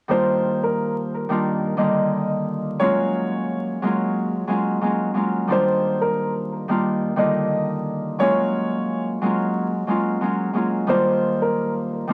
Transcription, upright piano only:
0.11 C5
0.63 A#4
1.78 D#5
2.80 C#5
5.52 C5
6.01 A#4
7.19 D#5
8.20 C#5
10.89 C5
11.42 A#4

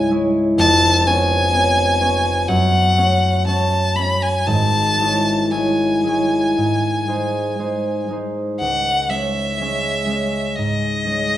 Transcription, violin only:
0.59 A5
1.07 G#5
2.48 F#5
3.47 A5
3.96 B5
4.22 G#5
4.47 A5
5.52 G#5
8.60 F#5
9.10 E5
10.56 D#5

